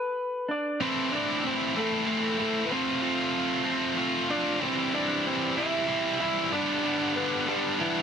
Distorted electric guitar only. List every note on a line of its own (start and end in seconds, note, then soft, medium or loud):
0.80 1.11 A2 medium
0.80 1.11 E3 medium
0.80 1.12 A3 loud
0.80 1.13 C4 loud
0.80 1.12 E4 loud
1.12 1.74 A2 medium
1.12 1.74 E3 medium
1.12 1.75 A3 medium
1.12 1.76 C4 medium
1.12 1.75 E4 medium
1.75 2.05 A2 medium
1.75 2.05 E3 medium
1.75 2.06 A3 medium
1.75 2.07 C4 medium
1.75 2.06 E4 loud
2.06 2.37 A2 medium
2.06 2.38 E3 medium
2.06 2.38 A3 medium
2.06 2.39 C4 medium
2.06 2.38 E4 medium
2.38 2.68 A2 medium
2.38 2.69 E3 medium
2.38 2.69 A3 medium
2.38 2.71 C4 medium
2.38 2.69 E4 medium
2.70 3.01 F3 medium
2.70 3.01 A3 loud
2.70 3.03 C4 loud
2.70 3.02 F4 loud
3.02 3.64 F3 medium
3.02 3.64 A3 medium
3.02 3.64 C4 medium
3.02 3.64 F4 medium
3.65 3.96 F3 medium
3.65 3.96 A3 medium
3.65 3.97 C4 loud
3.65 3.97 F4 medium
3.97 4.27 F3 medium
3.97 4.28 A3 medium
3.97 4.28 C4 medium
3.97 4.29 F4 loud
4.29 4.59 F3 medium
4.29 4.59 A3 medium
4.29 4.60 C4 medium
4.29 4.60 F4 medium
4.60 4.92 E3 loud
4.60 4.93 G3 loud
4.60 4.93 C4 loud
4.60 4.93 E4 loud
4.93 5.55 E3 medium
4.93 5.56 G3 medium
4.93 5.56 C4 medium
4.93 5.56 E4 medium
5.57 5.86 E3 medium
5.57 5.86 G3 loud
5.57 5.87 C4 loud
5.57 5.87 E4 loud
5.87 6.19 E3 medium
5.87 6.20 G3 loud
5.87 6.20 C4 medium
5.87 6.20 E4 medium
6.20 6.50 E3 medium
6.20 6.51 G3 medium
6.20 6.51 C4 medium
6.20 6.51 E4 loud
6.51 6.83 G2 loud
6.51 6.83 D3 loud
6.51 6.84 G3 loud
6.51 6.84 B3 loud
6.51 6.84 D4 loud
6.84 7.46 G2 medium
6.84 7.46 D3 medium
6.84 7.47 G3 medium
6.84 7.47 B3 medium
6.84 7.47 D4 loud
7.47 7.77 G2 medium
7.47 7.78 D3 medium
7.47 7.78 G3 loud
7.47 7.79 B3 loud
7.47 7.79 D4 loud
7.78 8.02 G2 medium
7.78 8.02 D3 medium
7.78 8.02 G3 loud
7.78 8.02 B3 medium
7.78 8.02 D4 medium